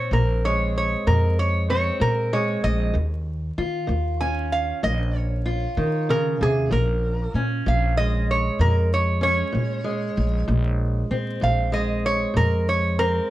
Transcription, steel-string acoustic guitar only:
0.00 1.68 C4 medium
0.13 0.69 A#2 medium
0.46 2.32 G#3 medium
1.07 1.63 A#2 medium
1.70 2.95 C4 medium
2.00 2.57 A#2 medium
2.33 2.95 G#3 medium
2.93 3.51 D#3 medium
3.58 5.45 F4 medium
3.87 4.44 D#3 medium
4.21 7.35 C#4 medium
4.83 5.39 D#3 medium
5.46 10.47 F4 medium
5.77 6.08 D#3 medium
6.09 6.40 C#3 medium
6.41 6.70 C3 medium
6.71 7.27 A#2 medium
7.35 9.21 C#4 medium
7.67 8.22 A#2 medium
7.99 9.83 G#3 medium
8.60 9.16 A#2 medium
9.21 11.10 C#4 medium
9.52 10.09 A#2 medium
9.84 11.71 G#3 medium
10.48 11.04 A#2 medium
11.11 12.98 C4 medium
11.41 11.98 A#2 medium
11.72 13.30 G#3 medium
12.34 12.91 A#2 medium
12.99 13.30 C4 medium

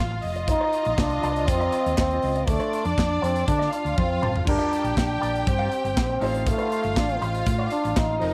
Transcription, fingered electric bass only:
0.00 0.18 A1 loud
0.24 0.53 F1 medium
0.86 0.96 A#1 medium
0.98 1.18 C2 loud
1.23 1.48 C2 medium
1.48 1.68 F2 loud
1.86 1.96 D#2 medium
1.98 2.18 D#2 loud
2.23 2.43 C#2 loud
2.48 2.58 D2 medium
2.85 2.95 F2 medium
2.98 3.18 F2 medium
3.23 3.42 F2 medium
3.48 3.68 D3 loud
3.85 3.95 D2 medium
3.98 4.18 F2 loud
4.22 4.42 F#1 loud
4.47 4.57 G1 loud
4.84 4.94 A#1 medium
4.97 5.17 A#1 loud
5.23 5.42 A#1 medium
5.47 5.67 G2 loud
5.84 5.94 G1 medium
5.97 6.17 A#1 loud
6.22 6.52 A1 loud
6.84 6.97 G1 medium
6.97 7.17 A1 loud
7.22 7.42 A1 medium
7.47 7.67 A2 loud
7.85 7.94 A1 medium
7.97 8.17 A1 loud
8.21 8.34 F1 loud

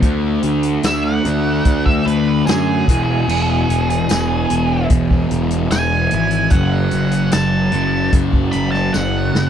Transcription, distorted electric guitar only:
0.02 1.22 D3 medium
0.02 1.23 A3 loud
0.02 1.25 D4 loud
1.26 2.86 D3 medium
1.26 2.86 A3 medium
1.26 2.85 D4 medium
2.88 4.07 E2 medium
2.88 4.08 B2 loud
2.88 4.12 E3 loud
4.10 6.10 E2 medium
4.10 6.10 B2 medium
4.10 6.54 E3 medium
6.52 7.71 F#2 medium
6.52 7.72 C#3 loud
6.52 7.71 F#3 loud
7.73 9.49 F#2 medium
7.73 9.49 C#3 medium
7.73 9.49 F#3 medium

